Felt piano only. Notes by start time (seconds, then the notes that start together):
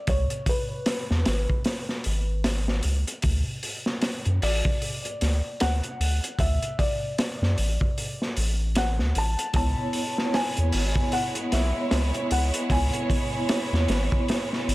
Already playing: D5
0.09 C#5
0.49 B4
4.43 D5
5.61 F#5
6.40 E5
6.79 D5
8.77 F#5
9.18 A5
9.56 A5
10.34 G#5
11.13 F#5
11.53 E5
12.32 F#5
12.72 G#5